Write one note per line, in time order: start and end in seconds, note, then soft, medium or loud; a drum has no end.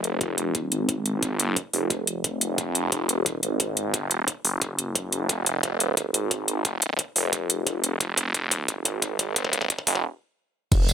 0.00 0.46 F1 loud
0.00 closed hi-hat loud
0.21 kick loud
0.21 closed hi-hat medium
0.38 closed hi-hat medium
0.46 0.70 E1 loud
0.55 kick medium
0.55 closed hi-hat medium
0.72 1.31 G#1 loud
0.72 closed hi-hat loud
0.89 kick loud
0.89 closed hi-hat medium
1.06 closed hi-hat medium
1.23 kick loud
1.23 closed hi-hat medium
1.31 1.55 G1 loud
1.40 closed hi-hat medium
1.56 kick loud
1.56 closed hi-hat medium
1.73 2.23 F1 loud
1.73 open hi-hat medium
1.90 kick medium
1.90 closed hi-hat medium
2.07 closed hi-hat medium
2.24 2.57 F1 medium
2.24 kick medium
2.24 closed hi-hat medium
2.41 closed hi-hat medium
2.58 3.17 F1 medium
2.58 kick loud
2.58 closed hi-hat medium
2.75 closed hi-hat medium
2.92 kick loud
2.92 closed hi-hat medium
3.09 closed hi-hat medium
3.17 3.42 E1 medium
3.26 kick loud
3.26 closed hi-hat medium
3.43 4.26 G#1 loud
3.43 closed hi-hat medium
3.60 kick loud
3.60 closed hi-hat medium
3.77 closed hi-hat medium
3.94 kick loud
3.94 closed hi-hat medium
4.11 closed hi-hat medium
4.28 kick loud
4.28 closed hi-hat medium
4.45 5.28 F#1 loud
4.45 open hi-hat medium
4.62 kick loud
4.62 closed hi-hat medium
4.79 closed hi-hat medium
4.95 kick loud
4.95 closed hi-hat medium
5.12 closed hi-hat medium
5.29 6.13 F1 loud
5.29 kick loud
5.29 closed hi-hat medium
5.46 closed hi-hat medium
5.63 kick loud
5.63 closed hi-hat medium
5.80 closed hi-hat medium
5.97 kick loud
5.97 closed hi-hat medium
6.14 6.97 G#1 loud
6.14 closed hi-hat medium
6.31 kick loud
6.31 closed hi-hat medium
6.48 closed hi-hat medium
6.65 kick loud
6.65 closed hi-hat medium
6.82 closed hi-hat medium
6.99 kick loud
6.99 closed hi-hat medium
7.16 7.65 F1 loud
7.16 open hi-hat medium
7.33 kick loud
7.33 closed hi-hat medium
7.50 closed hi-hat loud
7.67 7.99 F1 loud
7.67 kick loud
7.67 closed hi-hat medium
7.84 closed hi-hat medium
8.01 8.84 F1 loud
8.01 kick loud
8.01 closed hi-hat medium
8.17 kick loud
8.17 closed hi-hat loud
8.34 kick loud
8.34 closed hi-hat medium
8.51 kick loud
8.51 closed hi-hat loud
8.68 kick loud
8.68 closed hi-hat medium
8.85 9.69 G#1 loud
8.85 kick loud
8.85 closed hi-hat loud
9.02 kick loud
9.02 closed hi-hat medium
9.19 kick loud
9.19 closed hi-hat medium
9.36 kick loud
9.36 closed hi-hat medium
9.45 kick medium
9.53 kick loud
9.53 closed hi-hat loud
9.62 kick loud
9.70 kick loud
9.70 closed hi-hat medium
9.79 kick loud
9.87 10.04 F#1 loud
9.87 kick loud
9.87 open hi-hat medium
9.95 kick medium
10.72 10.93 F1 loud
10.72 kick loud
10.72 closed hi-hat medium
10.72 tambourine soft
10.72 crash loud
10.89 closed hi-hat loud
10.89 tambourine medium